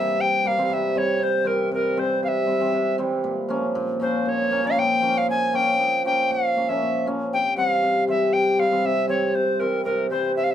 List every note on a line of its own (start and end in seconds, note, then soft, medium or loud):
0.00 0.18 C3 medium
0.00 0.24 E3 medium
0.00 0.43 G3 medium
0.00 0.22 E5 medium
0.19 0.68 C3 medium
0.19 0.48 G5 medium
0.44 0.51 G3 medium
0.44 0.51 A#3 medium
0.44 0.65 F5 medium
0.57 0.75 E3 medium
0.57 0.95 G3 medium
0.57 0.71 C4 medium
0.65 0.74 F5 medium
0.70 1.18 C3 medium
0.70 0.99 E5 medium
0.95 1.26 E3 medium
0.95 1.43 G3 medium
0.95 1.08 C4 medium
0.95 1.24 C#5 medium
1.19 1.70 C3 medium
1.19 1.48 C5 medium
1.44 1.77 E3 medium
1.44 1.96 G3 medium
1.44 1.59 C4 medium
1.44 1.72 A#4 medium
1.71 2.22 C3 medium
1.71 2.00 A#4 medium
1.97 2.28 E3 medium
1.97 2.45 G3 soft
1.97 2.10 C4 medium
1.97 2.23 C5 medium
2.23 2.72 C3 medium
2.23 2.29 F5 medium
2.28 2.96 E5 medium
2.46 2.54 G3 medium
2.46 2.54 C4 medium
2.60 2.79 E3 medium
2.60 2.97 G3 medium
2.60 2.74 C4 medium
2.73 3.30 C3 medium
2.98 3.30 E3 medium
2.98 3.30 G3 medium
2.98 3.12 C4 medium
3.24 3.74 A#2 medium
3.49 3.98 F3 medium
3.49 3.63 A#3 medium
3.49 3.63 C#4 medium
3.75 4.24 A#2 medium
4.00 4.62 F3 medium
4.00 4.13 A#3 soft
4.00 4.14 C#4 medium
4.00 4.30 C5 medium
4.25 4.76 A#2 medium
4.25 4.68 C#5 medium
4.51 4.58 A#3 medium
4.51 4.58 C#4 medium
4.63 5.00 F3 medium
4.63 4.77 A#3 medium
4.63 4.77 C#4 medium
4.63 4.80 F5 medium
4.77 5.26 A#2 medium
4.77 5.19 G5 medium
5.02 5.52 F3 medium
5.02 5.15 A#3 medium
5.02 5.16 C#4 medium
5.17 5.29 F5 medium
5.27 5.78 A#2 soft
5.27 5.56 G#5 loud
5.53 6.04 F3 medium
5.53 5.66 A#3 medium
5.53 5.67 C#4 medium
5.53 6.05 G5 loud
5.79 6.28 A#2 medium
6.05 6.68 F3 medium
6.05 6.18 A#3 medium
6.05 6.18 C#4 medium
6.05 6.33 G5 medium
6.30 6.81 A#2 medium
6.30 6.70 F5 medium
6.56 6.62 A#3 medium
6.56 6.63 C#4 medium
6.68 7.05 F3 medium
6.68 6.81 A#3 medium
6.68 6.82 C#4 medium
6.68 7.06 E5 medium
6.83 7.37 A#2 medium
7.06 7.37 F3 medium
7.06 7.19 A#3 medium
7.06 7.19 C#4 medium
7.33 7.82 C3 soft
7.33 7.56 G5 medium
7.56 7.87 E3 medium
7.56 8.07 G3 medium
7.56 7.70 C4 medium
7.56 8.04 F5 medium
7.83 8.32 C3 medium
8.07 8.38 E3 medium
8.07 8.57 G3 soft
8.07 8.21 C4 medium
8.07 8.34 E5 medium
8.33 8.83 C3 medium
8.33 8.61 G5 medium
8.58 8.65 G3 medium
8.58 8.65 C4 medium
8.58 8.87 F5 medium
8.71 8.89 E3 medium
8.71 9.07 G3 medium
8.71 8.85 C4 medium
8.84 9.34 C3 medium
8.84 9.08 E5 medium
9.08 9.40 E3 medium
9.08 9.59 G3 medium
9.08 9.22 C4 medium
9.08 9.36 C#5 medium
9.35 9.85 C3 medium
9.35 9.61 C5 medium
9.59 9.91 E3 medium
9.59 10.09 G3 medium
9.59 9.73 C4 medium
9.59 9.83 A#4 medium
9.84 10.36 C3 medium
9.84 10.09 A#4 medium
10.10 10.42 E3 medium
10.10 10.54 G3 medium
10.10 10.24 C4 medium
10.10 10.34 C5 medium
10.36 10.54 C3 medium
10.36 10.45 E5 medium
10.43 10.52 F5 medium
10.50 10.54 E5 medium